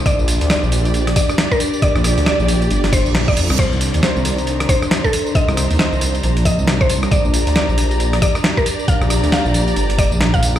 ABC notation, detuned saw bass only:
X:1
M:4/4
L:1/16
Q:"Swing 16ths" 1/4=136
K:Bbmix
V:1 name="Detuned saw bass" clef=bass
z B,,, B,,, D,, z B,,,4- B,,, z6 | z B,,, B,,, D,, z B,,,3 G,,,3 B,,,2 B,,, F,, C,,- | C,, C,, C,, E,, z C,,4- C,, z6 | z C,, C,, E,, z C,,3 B,,,3 C,,4- C,, |
z B,,, B,,, D,, z B,,,4- B,,, z6 | z B,,, B,,, D,, z B,,,3 G,,,3 B,,,4- B,,, |]